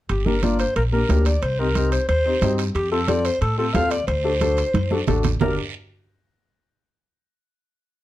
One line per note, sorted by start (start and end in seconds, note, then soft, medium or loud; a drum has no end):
0.09 0.63 G1 medium
0.09 0.27 G4 medium
0.09 high timbale medium
0.09 long guiro medium
0.26 0.32 A#3 medium
0.26 0.32 D4 medium
0.26 0.32 G4 medium
0.26 0.45 A#4 medium
0.26 high conga medium
0.43 0.60 A#3 medium
0.43 0.60 D4 medium
0.43 0.61 F4 medium
0.43 0.59 D5 medium
0.43 high conga medium
0.43 high timbale medium
0.43 short guiro medium
0.59 0.75 C5 medium
0.59 high timbale medium
0.59 short guiro medium
0.76 1.03 A#1 medium
0.76 0.83 A#4 medium
0.76 high timbale medium
0.76 long guiro medium
0.92 0.98 A#3 medium
0.92 0.98 D4 medium
0.92 0.99 G4 medium
0.92 1.27 A#4 medium
1.09 1.36 D2 medium
1.09 1.27 A#3 medium
1.09 1.27 D4 medium
1.09 1.27 G4 medium
1.09 high conga medium
1.09 high timbale medium
1.09 low timbale medium
1.09 short guiro medium
1.25 1.44 D5 medium
1.25 high timbale medium
1.25 short guiro medium
1.42 1.96 C2 medium
1.42 1.60 C5 medium
1.42 high timbale medium
1.42 long guiro medium
1.59 1.65 C4 medium
1.59 1.65 D#4 medium
1.59 1.65 G4 medium
1.59 1.91 A#4 loud
1.75 1.93 C4 medium
1.75 1.93 D#4 medium
1.75 1.93 G4 medium
1.75 high conga medium
1.75 high timbale medium
1.75 short guiro medium
1.92 2.07 C5 medium
1.92 high timbale medium
1.92 short guiro medium
2.08 2.35 D#2 medium
2.08 2.55 C5 loud
2.08 high timbale medium
2.08 long guiro medium
2.25 2.31 C4 medium
2.25 2.31 D#4 medium
2.25 2.31 G4 medium
2.41 2.68 G2 loud
2.41 2.59 C4 medium
2.41 2.59 D#4 medium
2.41 2.60 G4 medium
2.41 high conga medium
2.41 high timbale medium
2.41 low timbale medium
2.41 short guiro medium
2.58 high timbale medium
2.58 short guiro medium
2.75 3.28 F2 medium
2.75 2.90 G4 medium
2.75 high timbale medium
2.75 long guiro medium
2.91 2.97 C4 medium
2.91 2.98 F4 medium
2.91 3.10 A4 medium
2.91 2.98 A4 medium
3.08 3.26 C4 medium
3.08 3.26 F4 medium
3.08 3.26 A4 medium
3.08 3.26 D5 loud
3.08 high conga medium
3.08 high timbale medium
3.08 short guiro medium
3.25 3.40 C5 medium
3.25 high timbale medium
3.25 short guiro medium
3.41 3.68 A2 medium
3.41 3.57 A4 medium
3.41 high timbale medium
3.41 long guiro medium
3.58 3.64 C4 medium
3.58 3.64 F4 medium
3.58 3.76 A4 medium
3.58 3.64 A4 medium
3.74 4.01 D#2 medium
3.74 3.92 C4 medium
3.74 3.92 F4 medium
3.74 3.92 A4 medium
3.74 3.92 F5 loud
3.74 high conga medium
3.74 high timbale medium
3.74 low timbale medium
3.74 short guiro medium
3.91 4.07 D5 medium
3.91 high timbale medium
3.91 short guiro medium
4.07 4.61 D2 medium
4.07 5.03 C5 loud
4.07 high timbale medium
4.07 long guiro medium
4.24 4.30 D4 medium
4.24 4.30 F#4 medium
4.24 4.31 A4 medium
4.40 4.58 D4 medium
4.40 4.59 F#4 medium
4.40 4.59 A4 medium
4.40 high conga medium
4.40 high timbale medium
4.40 short guiro medium
4.57 high timbale medium
4.57 short guiro medium
4.73 5.01 F#2 medium
4.73 high conga loud
4.73 high timbale medium
4.73 long guiro medium
4.91 4.97 D4 medium
4.91 4.97 F#4 medium
4.91 4.97 A4 medium
4.91 high conga medium
5.07 5.34 A1 medium
5.07 5.25 D4 medium
5.07 5.25 F#4 medium
5.07 5.25 A4 medium
5.07 low conga medium
5.07 high timbale medium
5.07 low timbale medium
5.07 short guiro medium
5.23 low conga medium
5.23 high timbale medium
5.23 short guiro medium
5.40 5.56 G1 medium
5.40 5.56 D4 medium
5.40 5.56 G4 medium
5.40 5.56 A#4 medium
5.40 low conga loud
5.40 low timbale medium
5.40 long guiro medium